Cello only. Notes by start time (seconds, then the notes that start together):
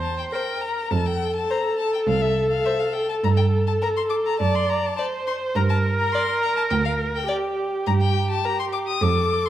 Already playing: E2
0.91 F2
2.07 C2
3.24 G2
4.40 F#2
5.55 G2
6.71 D2
7.87 G2
9.01 F2